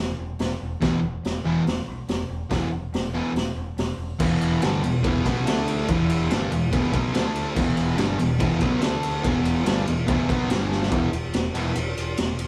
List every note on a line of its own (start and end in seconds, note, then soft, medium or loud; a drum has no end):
0.00 0.10 E1 medium
0.19 0.32 E1 medium
0.39 0.53 E1 medium
0.39 snare loud
0.39 open hi-hat soft
0.60 0.74 E1 medium
0.81 0.95 E1 medium
0.81 0.98 E2 medium
0.81 0.98 B2 medium
0.81 0.99 E3 medium
0.81 kick loud
0.81 snare loud
0.81 open hi-hat soft
1.02 1.16 E1 medium
1.24 1.37 E1 medium
1.24 snare loud
1.24 open hi-hat soft
1.44 1.58 E1 medium
1.44 1.62 E2 medium
1.44 1.62 B2 loud
1.44 1.62 E3 loud
1.65 1.79 E1 medium
1.65 snare loud
1.65 open hi-hat medium
1.88 2.01 B1 medium
2.08 2.22 E1 medium
2.08 snare loud
2.08 open hi-hat medium
2.28 2.42 E1 medium
2.50 2.64 E1 loud
2.50 2.67 E2 medium
2.50 2.68 B2 loud
2.50 2.68 E3 loud
2.50 kick loud
2.50 snare loud
2.50 open hi-hat medium
2.72 2.85 E1 medium
2.93 3.20 E1 medium
2.93 snare loud
2.93 open hi-hat soft
3.14 3.31 E2 medium
3.14 3.31 B2 medium
3.14 3.32 E3 loud
3.34 3.47 E1 medium
3.34 snare loud
3.34 open hi-hat medium
3.55 3.69 E1 medium
3.77 3.91 E1 medium
3.77 snare loud
3.77 open hi-hat medium
3.97 4.11 E1 medium
4.19 4.59 E1 medium
4.19 4.61 E2 loud
4.19 4.61 B2 medium
4.19 4.62 E3 medium
4.19 kick loud
4.19 crash loud
4.41 ride medium
4.62 4.81 G1 loud
4.62 4.82 G2 medium
4.62 4.83 D3 loud
4.62 4.83 G3 loud
4.62 snare loud
4.62 ride medium
4.83 5.03 E1 medium
4.83 5.00 E2 medium
4.83 5.00 B2 medium
4.83 ride medium
5.03 5.24 E1 loud
5.03 5.24 E2 loud
5.03 5.23 B2 medium
5.03 5.25 E3 loud
5.03 kick loud
5.03 ride loud
5.24 5.45 B1 loud
5.24 5.45 B2 loud
5.24 5.46 F#3 loud
5.24 5.46 B3 loud
5.24 kick loud
5.24 ride medium
5.45 5.85 D2 medium
5.45 5.87 D3 medium
5.45 5.88 A3 medium
5.45 5.88 D4 medium
5.45 snare loud
5.45 ride loud
5.68 ride medium
5.88 6.27 E1 medium
5.88 6.30 E2 medium
5.88 6.30 B2 medium
5.88 6.30 E3 loud
5.88 kick loud
5.88 ride loud
6.10 ride medium
6.30 6.50 G1 loud
6.30 6.51 G2 loud
6.30 6.51 D3 loud
6.30 6.51 G3 loud
6.30 snare loud
6.30 ride loud
6.51 6.71 E1 medium
6.51 6.68 E2 medium
6.51 6.68 B2 medium
6.51 ride medium
6.72 6.92 E1 loud
6.72 6.93 E2 medium
6.72 6.92 B2 loud
6.72 6.93 E3 loud
6.72 kick loud
6.72 ride loud
6.93 7.13 B1 loud
6.93 7.13 B2 loud
6.93 7.14 F#3 loud
6.93 7.14 B3 loud
6.93 kick loud
6.93 ride medium
7.14 7.53 D2 loud
7.14 7.55 D3 medium
7.14 7.56 A3 medium
7.14 7.56 D4 loud
7.14 snare loud
7.14 ride loud
7.35 ride medium
7.55 7.96 E1 loud
7.55 7.96 E2 loud
7.55 7.97 B2 loud
7.55 7.98 E3 medium
7.55 kick loud
7.55 crash loud
7.77 ride medium
7.97 8.17 G1 loud
7.97 8.18 G2 medium
7.97 8.18 D3 loud
7.97 8.19 G3 loud
7.97 snare loud
7.97 ride medium
8.19 8.39 E1 medium
8.19 8.36 E2 medium
8.19 8.36 B2 medium
8.19 ride medium
8.39 8.60 E1 loud
8.39 8.60 E2 medium
8.39 8.59 B2 loud
8.39 8.61 E3 loud
8.39 kick loud
8.39 ride loud
8.60 8.80 B1 loud
8.60 8.80 B2 loud
8.60 8.81 F#3 loud
8.60 8.82 B3 loud
8.60 kick loud
8.60 ride medium
8.81 9.21 D2 loud
8.81 9.23 D3 medium
8.81 9.23 A3 medium
8.81 9.24 D4 loud
8.81 snare loud
8.81 ride loud
9.03 ride medium
9.24 9.63 E1 loud
9.24 9.64 E2 medium
9.24 9.65 B2 loud
9.24 9.65 E3 loud
9.24 kick loud
9.24 ride loud
9.45 ride medium
9.65 9.85 G1 medium
9.65 9.86 G2 loud
9.65 9.86 D3 loud
9.65 9.86 G3 loud
9.65 snare loud
9.65 ride loud
9.87 10.07 E1 medium
9.87 10.04 E2 medium
9.87 10.04 B2 medium
9.87 ride medium
10.07 10.28 E1 medium
10.07 10.28 E2 loud
10.07 10.27 B2 loud
10.07 10.28 E3 loud
10.07 kick loud
10.07 ride loud
10.28 10.48 B1 loud
10.28 10.49 B2 medium
10.28 10.49 F#3 medium
10.28 10.50 B3 loud
10.28 kick loud
10.28 ride medium
10.49 10.89 G1 loud
10.49 10.91 G2 medium
10.49 10.91 D3 medium
10.49 10.92 G3 medium
10.49 snare loud
10.49 ride loud
10.72 snare medium
10.82 snare medium
10.91 11.09 E1 loud
10.91 11.08 E2 medium
10.91 11.09 B2 medium
10.91 11.09 E3 medium
10.91 kick loud
10.91 ride loud
11.12 11.29 E1 medium
11.12 ride medium
11.33 11.50 E1 loud
11.33 snare loud
11.33 ride medium
11.54 11.71 E1 medium
11.54 11.72 E2 loud
11.54 11.72 B2 loud
11.54 11.73 E3 loud
11.54 ride medium
11.75 11.92 E1 loud
11.75 ride loud
11.97 12.13 E1 medium
11.97 ride medium
12.17 12.47 E1 medium
12.17 snare loud
12.17 ride loud
12.39 ride medium